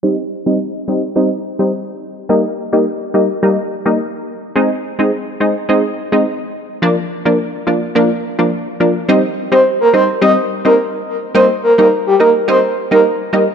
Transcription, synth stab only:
\new Staff \with { instrumentName = "Synth stab" } { \time 4/4 \key c \minor \tempo 4 = 106 <g c' ees'>16 r8 <g c' ees'>16 r8 <g c' ees'>16 r16 <g c' ees'>16 r8 <g c' ees'>16 r4 | <g bes ees'>16 r8 <g bes ees'>16 r8 <g bes ees'>16 r16 <g bes ees'>16 r8 <g bes ees'>16 r4 | <aes c' ees'>16 r8 <aes c' ees'>16 r8 <aes c' ees'>16 r16 <aes c' ees'>16 r8 <aes c' ees'>16 r4 | <f bes d'>16 r8 <f bes d'>16 r8 <f bes d'>16 r16 <f bes d'>16 r8 <f bes d'>16 r8 <f bes d'>16 r16 |
<g c' ees'>16 r8 <g c' ees'>16 r8 <g c' ees'>16 r16 <g c' ees'>16 r8 <g c' ees'>16 r4 | <g bes ees'>16 r8 <g bes ees'>16 r8 <g bes ees'>16 r16 <g bes ees'>16 r8 <g bes ees'>16 r8 <g bes ees'>16 r16 | }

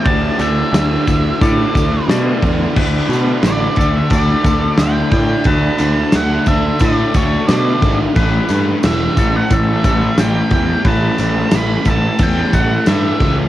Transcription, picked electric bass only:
\new Staff \with { instrumentName = "Picked electric bass" } { \clef bass \time 4/4 \key a \mixolydian \tempo 4 = 89 d,8 d,8 d,8 d,8 a,8 d,8 b,8 e,8 | d,8 b,8 a,,8 d,8 d,8 d,8 d,8 a,8 | d,8 d,8 d,8 d,8 a,8 d,8 b,8 gis,,8 | a,,8 g,8 e,,8 a,,8 a,,8 a,,8 a,,8 e,8 |
a,,8 a,,8 a,,8 a,,8 e,8 a,,8 g,8 cis,8 | }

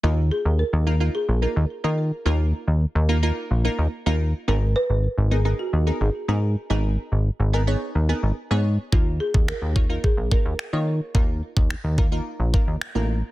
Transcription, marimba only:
\new Staff \with { instrumentName = "Marimba" } { \time 4/4 \key aes \dorian \tempo 4 = 108 f'8 aes'8 bes'4 aes'8 bes'4 r8 | r1 | bes'8 ces''4 aes'8 ges'8. aes'8. r8 | r1 |
f'8 aes'8 bes'4 aes'8 bes'4 r8 | r1 | }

